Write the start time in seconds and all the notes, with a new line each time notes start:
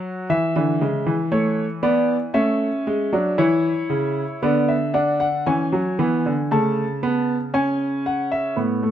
Already playing: F#3 F#5
0.30 E3 E5
0.56 D3 E3
0.81 C#3 G#3
1.06 E3
1.32 A3 C#5
1.83 B3 D5
2.34 A3 C#4 E5
2.87 G#3
3.13 F#3 D4
3.38 E3 E4 C#5
3.90 C#3
4.42 D3 B3 D5
4.68 E5
4.94 D4 F#5
5.20 F#5
5.46 E3 C#4 G#5
5.72 F#3
5.99 E3 B3
6.26 D3
6.51 C#3 A3 A5
7.03 B3
7.54 C#4 G#5
8.06 F#5
8.32 E5
8.56 A2 B3
8.83 A3